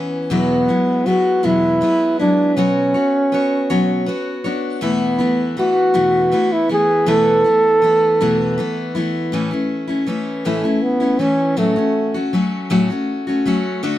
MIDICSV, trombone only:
0, 0, Header, 1, 2, 480
1, 0, Start_track
1, 0, Tempo, 750939
1, 203, Time_signature, 6, 3, 24, 8
1, 8938, End_track
2, 0, Start_track
2, 0, Title_t, "Trombone"
2, 0, Program_c, 0, 57
2, 207, Note_on_c, 0, 59, 90
2, 681, Note_on_c, 0, 66, 91
2, 691, Note_off_c, 0, 59, 0
2, 928, Note_on_c, 0, 64, 97
2, 938, Note_off_c, 0, 66, 0
2, 1400, Note_off_c, 0, 64, 0
2, 1404, Note_on_c, 0, 62, 88
2, 1634, Note_on_c, 0, 61, 93
2, 1644, Note_off_c, 0, 62, 0
2, 2837, Note_off_c, 0, 61, 0
2, 3090, Note_on_c, 0, 59, 86
2, 3539, Note_off_c, 0, 59, 0
2, 3572, Note_on_c, 0, 66, 97
2, 4169, Note_on_c, 0, 64, 82
2, 4179, Note_off_c, 0, 66, 0
2, 4284, Note_off_c, 0, 64, 0
2, 4295, Note_on_c, 0, 68, 99
2, 4529, Note_on_c, 0, 69, 110
2, 4539, Note_off_c, 0, 68, 0
2, 5724, Note_off_c, 0, 69, 0
2, 6682, Note_on_c, 0, 57, 74
2, 6918, Note_on_c, 0, 59, 86
2, 6928, Note_off_c, 0, 57, 0
2, 7163, Note_on_c, 0, 61, 91
2, 7172, Note_off_c, 0, 59, 0
2, 7402, Note_on_c, 0, 57, 78
2, 7412, Note_off_c, 0, 61, 0
2, 7881, Note_off_c, 0, 57, 0
2, 8938, End_track
0, 0, End_of_file